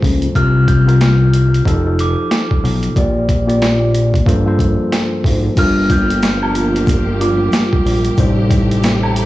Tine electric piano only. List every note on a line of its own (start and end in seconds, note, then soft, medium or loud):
0.00 0.10 G2 medium
0.00 0.11 F3 medium
0.00 0.11 A#3 medium
0.00 0.11 A4 medium
0.00 0.12 C5 loud
0.34 0.74 C3 medium
0.34 0.74 C4 medium
0.34 0.75 F4 medium
0.34 0.75 A#4 medium
0.85 1.60 C3 medium
0.85 1.61 C4 medium
0.85 1.61 F4 medium
0.85 1.61 A#4 medium
1.64 1.81 F3 medium
1.64 1.81 D#4 medium
1.64 1.82 G4 medium
1.64 1.82 A4 loud
1.84 2.71 F3 medium
1.84 2.72 D#4 medium
1.84 2.72 G4 medium
1.84 2.72 A4 medium
2.95 3.35 A#2 medium
2.95 3.35 A#3 medium
2.95 3.36 G4 medium
2.95 3.36 D5 medium
3.46 4.21 A#2 medium
3.46 4.21 A#3 medium
3.46 4.22 G4 medium
3.46 4.22 D5 loud
4.25 4.42 G2 loud
4.25 4.42 F3 medium
4.25 4.42 A#3 medium
4.25 4.43 A4 medium
4.25 4.43 C5 loud
4.45 5.32 G2 medium
4.45 5.32 F3 medium
4.45 5.33 A#3 medium
4.45 5.33 A4 medium
4.45 5.33 C5 loud
5.56 6.58 G2 medium
5.56 6.59 G3 medium
5.56 6.59 F4 medium
5.56 6.59 A#4 medium
7.19 7.98 G2 medium
7.19 7.98 G3 medium
7.19 7.98 F4 medium
7.19 7.99 A#4 medium
8.17 9.19 A2 medium
8.17 9.20 G3 medium
8.17 9.20 D#4 medium
8.17 9.21 C5 loud